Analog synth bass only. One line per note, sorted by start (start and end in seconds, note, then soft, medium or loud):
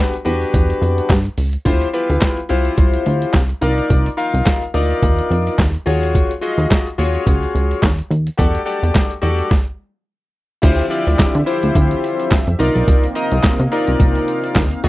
0.26 0.45 E2 medium
0.54 0.73 E2 medium
0.82 1.01 F2 loud
1.10 1.29 G2 loud
1.38 1.57 C#2 medium
1.66 1.85 D2 loud
2.10 2.18 D2 loud
2.50 2.69 C2 medium
2.78 2.97 C2 medium
3.06 3.25 D2 medium
3.34 3.53 C2 medium
3.62 3.81 C2 loud
3.90 4.09 C2 loud
4.34 4.42 C2 loud
4.74 4.93 D2 medium
5.03 5.22 D#2 loud
5.31 5.50 F2 medium
5.58 5.78 D#2 loud
5.86 6.25 D#2 medium
6.58 6.67 D#2 loud
6.99 7.18 D#2 medium
7.27 7.46 C#2 medium
7.55 7.74 C#2 medium
7.82 8.02 D#2 loud
8.11 8.30 D#2 loud
8.39 8.58 E2 loud
8.83 8.91 E2 medium
9.23 9.42 E2 medium
10.63 10.82 D2 loud
11.07 11.16 D2 loud
11.35 11.43 D3 loud
11.63 11.72 D2 medium
11.76 11.95 D2 loud
12.47 12.56 F2 medium
12.60 12.70 C2 loud
12.75 12.84 B1 medium
12.88 13.07 C2 loud
13.32 13.40 C2 loud
13.60 13.68 C3 loud
13.88 13.96 C2 medium
14.00 14.19 C2 medium
14.56 14.75 D2 medium
14.84 14.89 D#2 loud